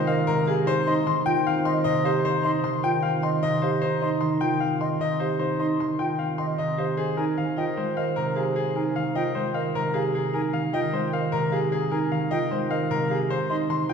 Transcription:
0.00 0.26 C3 loud
0.00 0.68 D#3 loud
0.00 0.68 G#3 medium
0.00 0.68 A#3 loud
0.00 0.13 C5 medium
0.07 0.33 A#4 medium
0.07 0.15 D#5 medium
0.07 0.33 F5 loud
0.27 0.68 C3 loud
0.27 0.53 A#4 loud
0.47 0.73 G4 loud
0.47 0.73 G#4 medium
0.47 0.55 F5 medium
0.66 2.24 D#4 loud
0.66 3.59 C5 medium
0.66 0.92 C5 loud
0.86 1.12 D#4 loud
0.86 1.12 D#5 medium
0.86 0.94 C6 loud
1.06 2.63 D#3 medium
1.06 1.32 C6 medium
1.25 1.51 F4 loud
1.25 1.33 G5 medium
1.25 1.51 G5 loud
1.46 3.02 C4 medium
1.46 1.71 F5 medium
1.65 1.72 D#5 medium
1.65 1.91 D#5 medium
1.65 1.91 C6 medium
1.84 3.42 C3 loud
1.84 2.10 D#5 loud
2.04 2.30 G4 medium
2.04 2.23 C5 medium
2.04 2.11 F5 medium
2.25 3.81 D#4 loud
2.25 2.50 C5 loud
2.43 2.69 D#4 medium
2.43 2.70 D#5 medium
2.43 2.51 C6 loud
2.64 4.20 D#3 medium
2.64 2.90 C6 medium
2.83 3.09 F4 loud
2.83 2.91 G5 medium
2.83 3.09 G5 loud
3.03 4.60 C4 medium
3.03 3.29 F5 medium
3.22 3.48 D#5 medium
3.22 3.30 D#5 medium
3.22 3.49 C6 medium
3.43 4.98 C3 medium
3.43 3.68 D#5 loud
3.62 3.88 G4 medium
3.62 3.80 C5 medium
3.62 3.70 F5 medium
3.82 5.38 D#4 loud
3.82 4.08 C5 loud
4.01 4.27 D#4 medium
4.01 4.27 D#5 medium
4.01 4.09 C6 medium
4.21 5.78 D#3 medium
4.21 4.47 C6 medium
4.41 4.67 F4 medium
4.41 4.67 G5 loud
4.41 4.49 G5 medium
4.60 6.17 C4 medium
4.60 4.87 F5 medium
4.80 5.06 D#5 medium
4.80 4.88 D#5 medium
4.80 5.07 C6 medium
5.00 6.57 C3 medium
5.00 5.26 D#5 loud
5.20 5.46 G4 medium
5.20 5.38 C5 medium
5.20 5.28 F5 medium
5.39 9.29 D#4 medium
5.39 5.66 C5 medium
5.59 5.86 D#4 medium
5.59 5.85 D#5 medium
5.59 5.67 C6 medium
5.79 6.99 D#3 medium
5.79 6.06 C6 medium
5.99 6.25 F4 medium
5.99 6.06 G5 medium
5.99 6.25 G5 medium
6.19 10.09 C4 medium
6.19 6.45 F5 medium
6.38 6.64 D#5 medium
6.38 6.46 D#5 medium
6.38 6.64 C6 medium
6.58 7.00 C3 medium
6.58 6.84 D#5 medium
6.78 7.04 G4 medium
6.78 7.04 C5 medium
6.78 6.86 F5 medium
6.97 7.23 G#4 medium
6.97 9.90 C5 medium
7.17 7.43 D#4 medium
7.17 7.43 A#4 medium
7.17 7.25 G#5 medium
7.38 8.95 D#3 medium
7.38 7.63 F5 medium
7.57 7.83 F4 medium
7.57 7.83 D#5 medium
7.57 7.64 G5 medium
7.77 9.34 G#3 medium
7.77 8.03 C5 medium
7.97 8.22 A#4 medium
7.97 8.04 D#5 medium
7.97 8.22 F5 medium
8.16 9.73 C3 medium
8.16 8.42 A#4 loud
8.36 8.62 G4 medium
8.36 8.54 G#4 medium
8.36 8.44 F5 medium
8.56 8.82 G#4 medium
8.75 9.01 D#4 medium
8.75 9.01 A#4 medium
8.75 8.83 G#5 medium
8.96 10.52 D#3 medium
8.96 9.21 F5 medium
9.15 9.41 F4 medium
9.15 9.41 D#5 medium
9.15 9.23 G5 medium
9.35 10.91 G#3 medium
9.35 9.61 C5 medium
9.54 9.80 A#4 medium
9.54 9.62 D#5 medium
9.54 9.80 F5 medium
9.75 11.31 C3 loud
9.75 10.00 A#4 loud
9.94 10.20 G4 medium
9.94 10.13 G#4 medium
9.94 10.02 F5 medium
10.15 10.40 G#4 medium
10.34 10.59 D#4 medium
10.34 10.59 A#4 medium
10.34 10.41 G#5 medium
10.53 12.10 D#3 medium
10.53 10.79 F5 medium
10.73 10.99 F4 medium
10.73 10.99 D#5 loud
10.73 10.80 G5 medium
10.93 12.50 G#3 medium
10.93 11.19 C5 medium
11.12 11.38 A#4 medium
11.12 11.20 D#5 medium
11.12 11.38 F5 medium
11.32 12.89 C3 loud
11.32 11.58 A#4 loud
11.51 11.78 G4 medium
11.51 11.71 G#4 medium
11.51 11.59 F5 medium
11.72 11.98 G#4 loud
11.91 12.17 D#4 medium
11.91 12.17 A#4 medium
11.91 11.99 G#5 medium
12.12 13.31 D#3 medium
12.12 12.37 F5 medium
12.31 12.57 F4 medium
12.31 12.57 D#5 loud
12.31 12.38 G5 medium
12.51 13.31 G#3 medium
12.51 12.76 C5 medium
12.70 12.96 A#4 medium
12.70 12.78 D#5 medium
12.70 12.96 F5 medium
12.90 13.31 C3 loud
12.90 13.16 A#4 loud
13.10 13.36 G4 medium
13.10 13.36 G#4 medium
13.10 13.17 F5 medium
13.30 13.93 C5 medium
13.30 13.56 C5 loud
13.49 13.75 D#4 medium
13.49 13.75 D#5 medium
13.49 13.57 C6 loud
13.69 13.93 D#3 medium
13.69 13.93 C6 medium
13.89 13.93 F4 loud
13.89 13.93 G5 medium
13.89 13.93 G5 loud

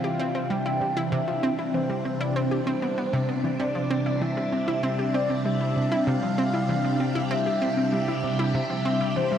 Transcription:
0.00 9.38 C3 medium
0.00 4.33 E3 medium
0.00 9.38 G3 medium
0.00 9.38 D4 medium
0.00 0.10 G4 medium
0.00 0.52 F5 loud
0.19 0.29 C4 loud
0.35 0.40 C4 medium
0.50 0.64 G3 medium
0.50 0.97 G5 loud
0.66 0.75 E4 medium
0.81 0.90 C3 medium
0.97 1.11 E4 loud
1.12 1.21 C3 loud
1.12 1.76 E5 loud
1.28 1.33 F3 medium
1.43 1.52 C4 loud
1.59 1.72 E4 medium
1.74 1.88 E3 medium
1.74 2.22 C5 medium
1.90 1.99 G3 medium
2.05 2.19 C4 medium
2.21 2.34 E4 loud
2.21 2.38 D5 medium
2.36 2.50 C4 loud
2.36 3.29 C5 medium
2.51 2.57 G4 medium
2.67 2.72 C4 loud
2.82 2.92 B3 medium
2.98 3.12 B3 medium
3.13 3.27 C3 loud
3.29 3.38 B3 medium
3.44 3.58 E3 medium
3.60 3.69 C3 loud
3.60 4.23 D5 loud
3.75 3.81 F3 medium
3.90 4.00 C4 loud
4.06 4.20 E4 medium
4.21 4.35 E3 medium
4.21 4.83 E5 loud
4.30 9.38 G4 medium
4.37 4.46 G3 medium
4.52 4.66 C4 medium
4.68 4.82 E4 loud
4.83 4.97 C4 loud
4.83 5.16 E5 loud
4.99 5.04 G4 medium
5.14 5.24 C4 loud
5.14 5.47 D5 loud
5.30 5.35 C4 medium
5.45 5.59 G3 medium
5.45 6.07 E5 loud
5.61 5.70 E4 medium
5.76 5.85 C3 medium
5.92 6.05 E4 loud
6.07 6.16 C3 loud
6.07 7.27 F5 loud
6.23 6.28 F3 medium
6.38 6.47 C4 loud
6.54 6.67 E4 medium
6.69 6.83 E3 medium
6.85 6.94 G3 medium
7.00 7.14 C4 medium
7.15 7.29 E4 loud
7.31 7.45 C4 loud
7.31 7.89 E5 loud
7.46 7.52 G4 medium
7.62 7.71 C4 loud
7.77 7.83 C4 medium
7.93 8.06 G3 medium
7.93 8.36 E5 loud
8.08 8.17 E4 medium
8.24 8.33 C3 medium
8.39 8.53 E4 loud
8.54 8.64 C3 loud
8.54 9.18 E5 loud
8.70 8.75 F3 medium
8.85 8.95 C4 loud
9.01 9.15 E4 medium
9.16 9.30 E3 medium
9.16 9.38 C5 loud
9.32 9.38 G3 medium

